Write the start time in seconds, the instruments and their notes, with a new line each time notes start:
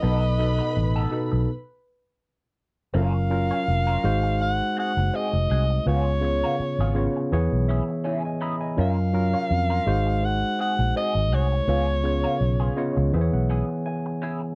Already playing: alto saxophone D#5
0.02 fingered electric bass B1, tine electric piano B2 B3 D#4 A4, clean electric guitar B3 D#4 A4, string section B4 B5
0.22 muted clean electric guitar stroke
0.38 tine electric piano B2 B3 D#4 A4, muted clean electric guitar stroke
0.59 clean electric guitar B3 D#4 B4
0.76 fingered electric bass A1, muted clean electric guitar stroke
0.96 clean electric guitar B3 D#4 A4
1.11 tine electric piano B2 B3 D#4 A4
1.32 fingered electric bass B1, muted clean electric guitar stroke
2.94 fingered electric bass F#1, tine electric piano F#3 C#4 F4 A#4, clean electric guitar C#4 F4 A#4, alto saxophone F5
3.14 muted clean electric guitar stroke
3.29 tine electric piano F#3 C#4 F4 A#4, muted clean electric guitar stroke
3.51 clean electric guitar C#4 F4 C#5
3.68 fingered electric bass F1, muted clean electric guitar stroke
3.87 clean electric guitar C#4 F4 A#4
4.04 fingered electric bass G#1, tine electric piano G#3 D#4 F#4 C5, muted clean electric guitar stroke
4.23 muted clean electric guitar stroke
4.40 alto saxophone F#5, muted clean electric guitar stroke
4.77 clean electric guitar C4 F#4 G#4, alto saxophone F#5
4.97 fingered electric bass F#1, muted clean electric guitar stroke
5.14 clean electric guitar C4 F#4 G#4, alto saxophone D#5
5.33 fingered electric bass F1, muted clean electric guitar stroke
5.50 fingered electric bass C2, clean electric guitar C4 F#4 G#4
5.70 muted clean electric guitar stroke
5.86 fingered electric bass C#2, tine electric piano C#3 B3 F4 C#5, clean electric guitar B3 F4 G#4, alto saxophone C#5
6.07 muted clean electric guitar stroke
6.21 tine electric piano C#3 B3 F4 C#5, muted clean electric guitar stroke
6.44 clean electric guitar B3 F4 A#4
6.60 muted fingered electric bass stroke, muted clean electric guitar stroke
6.79 fingered electric bass G#1, clean electric guitar B3 F4 G#4
6.95 tine electric piano C#3 B3 F4 C#5, muted clean electric guitar stroke
7.17 muted clean electric guitar stroke
7.32 fingered electric bass E2, tine electric piano E3 B3 G#4 C#5, muted clean electric guitar stroke
7.52 fingered electric bass B1
7.68 clean electric guitar C#4 E4 G#4, tine electric piano E5
7.88 muted clean electric guitar stroke
8.04 clean electric guitar C#4 E4 G#4, tine electric piano G#5
8.24 tine electric piano D#5 G#5, muted clean electric guitar stroke
8.41 clean electric guitar C#4 E4 G#4, tine electric piano E5 A#5 B5
8.61 tine electric piano D#5 G#5, muted clean electric guitar stroke
8.76 fingered electric bass F#2, tine electric piano F#3 C#4 F4 A#4, clean electric guitar C#4 F4 A#4
8.81 alto saxophone F5
8.98 muted clean electric guitar stroke
9.13 tine electric piano F#3 C#4 F4 A#4, muted clean electric guitar stroke
9.34 clean electric guitar C#4 F4 C#5
9.51 fingered electric bass F2, muted clean electric guitar stroke
9.70 clean electric guitar C#4 F4 A#4
9.86 fingered electric bass G#1, tine electric piano G#3 D#4 F#4 C5, muted clean electric guitar stroke
10.07 muted clean electric guitar stroke
10.23 alto saxophone F#5, muted clean electric guitar stroke
10.59 clean electric guitar C4 F#4 G#4, alto saxophone F#5
10.79 fingered electric bass A#1, muted clean electric guitar stroke
10.96 clean electric guitar C4 F#4 G#4, alto saxophone D#5
11.15 fingered electric bass G#1
11.32 fingered electric bass C2, clean electric guitar C4 F#4 G#4, alto saxophone C#5
11.52 muted clean electric guitar stroke
11.67 fingered electric bass C#2, tine electric piano C#3 B3 F4 C#5, clean electric guitar B3 F4 G#4
12.04 tine electric piano C#3 B3 F4 C#5, muted clean electric guitar stroke
12.24 clean electric guitar B3 F4 A#4
12.41 fingered electric bass B1, muted clean electric guitar stroke
12.60 clean electric guitar B3 F4 G#4
12.76 tine electric piano C#3 B3 F4 C#5 D#5
12.97 fingered electric bass C#2, muted clean electric guitar stroke
13.13 fingered electric bass E2, tine electric piano E3 B3 G#4 C5 E5, muted clean electric guitar stroke
13.21 tine electric piano C#5
13.33 fingered electric bass B1, tine electric piano F#5
13.50 clean electric guitar C#4 E4 G#4, tine electric piano G#5
13.69 muted clean electric guitar stroke
13.86 tine electric piano G#5, muted clean electric guitar stroke
14.06 muted clean electric guitar stroke
14.22 clean electric guitar C#4 E4 G#4
14.42 muted clean electric guitar stroke